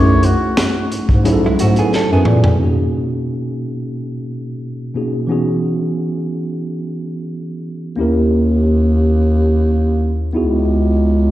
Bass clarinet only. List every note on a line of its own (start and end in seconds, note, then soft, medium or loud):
0.00 0.35 F#2 medium
0.92 0.99 G#2 soft
1.10 1.52 G#2 medium
1.59 1.88 G#2 medium
2.11 2.24 F#2 medium
2.26 2.55 A#2 medium
7.98 10.30 D#2 medium
10.35 11.31 C#2 medium